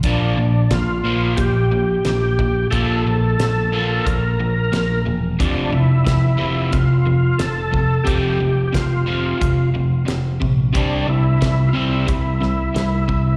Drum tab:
HH |x-x-x-x-|x-x-x-x-|x-x-x-x-|x-x-x-x-|
SD |--o---o-|--o---o-|--o---o-|--o---o-|
BD |o-o-o--o|o---o---|o-o-o--o|o-o-o--o|

HH |x-x-x-x-|
SD |--o--oo-|
BD |o-o-o--o|